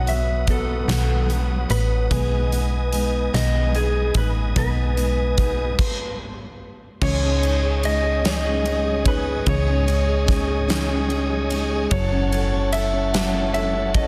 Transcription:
Already playing: B1 F#3 B3 F#4 B4 F#5 D#6
0.05 F#3 B3 F#4 A4 E5, closed hi-hat
0.47 F#3 B3 F#4 A4, kick, closed hi-hat
0.88 B1 B2 D#3 F#3 B3 F#4 A4, snare, closed hi-hat
1.29 F#3 B3 F#4 A4, closed hi-hat
1.69 A1 F#3 B3 F#4 A4 B4, closed hi-hat
2.10 B1 B2 D#3 G#3 B3 D#4 G#4 B4 D#5 G#5, kick, closed hi-hat
2.51 G#3 B3 D#4 G#4, closed hi-hat
2.93 G#3 B3 D#4 G#4, closed hi-hat
3.33 B1 B2 D#3 G#3 B3 D#4 G#4 D#5, snare, closed hi-hat
3.75 G#3 B3 D#4 G#4, closed hi-hat
4.14 A1 G#3 B3 D#4 G#4 B4, kick, closed hi-hat
4.56 B1 B2 D#3 G#3 B3 D#4 G#4 B4, kick, closed hi-hat
4.96 G#3 B3 D#4 G#4, closed hi-hat
5.38 G#3 B3 D#4 G#4, kick, closed hi-hat
5.79 kick, crash
7.01 C#2 C#3 E3 G#3 C#4 D#4 G#4 C#5 D#5 G#5 D#6, kick, crash
7.22 G#3 C#4 D#4 G#4
7.42 G#3 C#4 D#4 G#4, ride
7.63 G#4
7.83 G#3 C#4 D#4 G#4 D#5, ride
8.03 G#4
8.23 C#3 E3 G#3 C#4 D#4 G#4 D#5, snare, ride
8.43 G#3 C#4 D#4 G#4
8.64 G#3 C#4 D#4 G#4, ride
8.84 G#4
9.04 G#3 C#4 D#4 G#4 B4, kick, ride
9.24 G#4
9.45 C#2 C#3 E3 G#3 C#4 D#4 G#4 C#5, kick, ride
9.65 G#3 C#4 D#4 G#4
9.85 G#3 C#4 D#4 G#4, ride
10.06 G#4
10.26 G#3 C#4 D#4 G#4, kick, snare, ride
10.47 G#4
10.68 C#3 E3 G#3 C#4 D#4 G#4, snare, ride
10.89 G#3 C#4 D#4 G#4
11.09 G#3 C#4 D#4 G#4, ride
11.30 G#4
11.50 G#3 C#4 D#4 G#4, ride
11.72 G#4
11.91 F#1 F#3 C#4 E4 A4 C#5 F#5 A5, kick, ride
12.12 C#4 E4 A4
12.31 F#3 C#4 E4 A4, ride
12.53 C#4
12.72 F#3 C#4 E4 A4 E5, ride
12.93 C#4
13.13 F#3 C#4 E4 A4, snare, ride
13.34 C#4 E4 A4
13.54 F#3 C#4 E4 A4 E5, ride
13.75 C#4
13.94 F#3 C#4 E4 A4 D#5, kick, ride

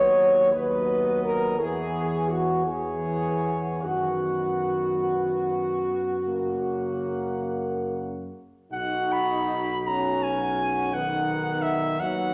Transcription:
Already playing: D#2 F#3 B3 C#5 D#5
0.52 F#3 B3 B4 D#5
1.23 A#4
1.58 E2 E3 B3 G#4 C#5
2.29 F#4
2.65 E3 B3 G#4 C#5
3.82 F#2 D#3 B3 F#4 F#5
6.24 C#3 A#3 F#5
8.72 B1 D#4 F#4 F#5
9.12 B5
9.86 C#4 F#4 A#5
10.23 G#5
10.92 D#3 B3 D#4 F#5
11.62 E5
12.00 D#2 F#3 B3 D#4 F#5

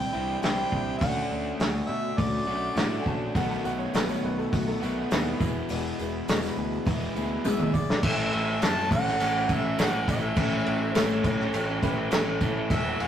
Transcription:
Already playing: C3 E3 G3 C4 D4 E4 G5
0.13 C2 C3 E3 G3 C4 D4 E4
0.42 C2 C3 E3 G3 C4 D4 E4 G5, snare, open hi-hat
0.71 C2 G3 D4 E4, kick
0.98 D2 D3 A3 C#4 F#5, kick, open hi-hat
1.02 A3 D4 F#4
1.30 D2 A3 C#4 F#4
1.59 D2 D3 A3 F#4, snare, open hi-hat
1.86 B2 E5
2.18 D2 D3 A3 C#4 F#4 D5, kick, open hi-hat
2.47 B1 D3 A3 C#4 D4 F#4
2.76 A2 D3 A3 C#4 D4 F#4, snare, open hi-hat
3.02 A#1 G#5, kick
3.06 A3 C#4 F#4 A5
3.34 B1 B2 D#3 A3 B3 F#4 F#5, kick, open hi-hat, tambourine
3.50 A5, tambourine
3.64 B1 A3 B3 F#4 F#5, tambourine
3.79 C#5, tambourine
3.94 B1 B2 D#3 A3 B3 F#4 B4, snare, open hi-hat, tambourine
4.09 C#5, tambourine
4.24 B1 B4, tambourine
4.38 A4, tambourine
4.52 B1 D#3 A3 B3 F#4, kick, open hi-hat
4.68 A4, tambourine
4.80 B1 B2 D#3 A3 B3 F#4, tambourine
5.10 D#2 B2 D#3 A3 B3 E4 F#4, snare, open hi-hat, tambourine
5.26 tambourine
5.39 E1 E2 B2 E3 G#3 B3 E4, kick, tambourine
5.69 E1 E2 B2 E3 G#3 B3 E4, open hi-hat
5.99 E1 E3 G#3 B3 E4, tambourine
6.28 E1 E2 B2 E3 G#3 B3 E4, snare, open hi-hat, tambourine
6.43 snare, tambourine
6.57 D2, tambourine
6.73 tambourine
6.85 E1 E2 B2 E3 G#3 B3 E4, kick, open hi-hat, tambourine
7.02 tambourine
7.15 D2 E2 B2 E3 G#3 B3 E4, tambourine
7.44 B1 E2 B2 E3 G#3 B3 E4 E5, high tom, tambourine
7.60 mid tom
7.73 B1 E3 G#3 B3 E4 D5, kick, tambourine
7.89 snare, tambourine
8.03 A1 A2 E3 A3 C#4 E4 A4 E5, kick, crash, tambourine
8.17 A3 C#4 A4
8.31 A1 E3 A3 C#4 A4 E5, crash
8.61 F#2 A2 E3 A3 C#4 E4 A4 A5, snare, tambourine, crash
8.91 A1 A3 C#4 E4 F#5, muted overdriven electric guitar stroke, kick, tambourine, crash
9.05 A3 C#4 A4, snare
9.20 A1 E3 A3 C#4 E4, tambourine, crash
9.34 A3 C#4 A4
9.49 A1 E3 A3 C#4 E4 A4, kick, tambourine, crash
9.53 E5
9.77 A1 A2 E3 A3 C#4 E4 A4, snare, tambourine, crash
9.81 F#5
9.92 A3 C#4 A4
10.07 A1 E3 A3 C#4 A4 E5, kick, tambourine, crash
10.22 A3 C#4 A4
10.36 A1 A2 E3 A3 C#4 E4 A4, kick, tambourine, crash
10.51 A3 C#4 A4
10.65 A1 E3 A3 C#4 A4, crash
10.91 A2 C5
10.95 A1 E3 A3 C#4 E4 A4 C#5, snare, tambourine, crash
11.24 A1 A3 C#4 E4 A4 C#5, muted overdriven electric guitar stroke, kick, tambourine, crash
11.39 A3 C#4 A4, snare
11.53 A1 E3 A3 C#4 E4 A4 C#5, tambourine, crash
11.68 A3 C#4 A4
11.82 A1 E3 A3 C#4 E4 G4 A4 B4, kick, tambourine, crash
12.11 A1 A2 E3 A3 C#4 E4 A4, snare, tambourine, crash
12.26 A3 C#4 A4
12.40 E3 A3 C#4 A4, kick, tambourine, crash
12.55 A3 C#4 A4
12.70 E1 E2 B2 E3 A3 B3 E4 A4 E5, kick, tambourine, crash
12.84 E3 A3 B3 A4
12.98 E1 E3 A3 B3 A4, crash
13.03 F#5

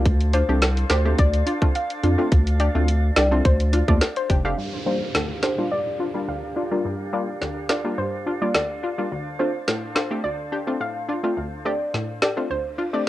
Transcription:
0.05 D2 D4 A4 C5 F5, kick, closed hi-hat
0.21 closed hi-hat
0.33 D4 F4 C5, closed hi-hat
0.49 C2 A3 C4 D4 G4
0.62 snare, closed hi-hat
0.77 closed hi-hat
0.90 D2 D4 G4 C5, snare, closed hi-hat
1.05 A3 C4 D4 G4
1.19 D2 D5, kick, closed hi-hat
1.34 closed hi-hat
1.47 D4 F4, closed hi-hat
1.62 A3 C4 D4 F4, kick
1.75 F5, closed hi-hat
1.90 closed hi-hat
2.03 F2 D4 F4, closed hi-hat
2.18 A3 C4 D4 F4
2.32 D2 D5, kick, closed hi-hat
2.47 closed hi-hat
2.60 D4 G4 D5, closed hi-hat
2.75 D2 A3 C4 D4 F4
2.88 closed hi-hat
3.16 C2 D4 G4 D5, snare, closed hi-hat
3.31 A3 C4 D4 F4
3.45 D2 C5, kick, closed hi-hat
3.60 closed hi-hat
3.73 D4 F4, closed hi-hat
3.88 D#2 A3 C4 D4 F4 D5, kick
4.01 snare, closed hi-hat
4.16 C5, closed hi-hat
4.30 F1 D4 G4, kick, closed hi-hat
4.45 A3 C4 D4 G4 F5
4.58 G2 D4 G4 A#4 F5, downlifter
4.86 G3 A#3 D4 F4 C5
5.15 D2, snare
5.43 D4 G4 C5, snare
5.58 G3 A#3 D4 F4
5.71 G2 D5
6.00 D4 F4
6.14 G3 A#3 D4 F4
6.28 D2 F5
6.56 D4 F4
6.71 G3 A#3 D4 F4
6.85 G2
7.13 G3 A#3 D4 F4 D5
7.41 D2, snare
7.69 D4 F4 D5, snare
7.85 G3 A#3 D4 F4
7.98 G2 C5
8.26 D4 F4
8.42 G3 A#3 D4 F4 D5
8.54 D2 D5, snare
8.83 D4 F4
8.98 G3 A#3 D4 F4
9.12 D2 A4 C5
9.39 A3 C4 D4 F4 C5
9.68 A2, snare
9.95 D4 F4 C5, snare
10.11 A3 C4 D4 G4
10.24 D2 D5
10.52 D4 G4
10.67 A3 C4 D4 F4
10.80 A2 F5
11.09 D4 F4
11.23 A3 C4 D4 F4
11.37 D2
11.65 A3 C4 D4 G4 D5
11.94 A2, snare
12.22 D4 G4 D5, snare
12.37 A3 C4 D4 F4
12.50 D2 C5, reverse cymbal
12.78 D4 F4
12.93 A3 C4 D4 G4 D5

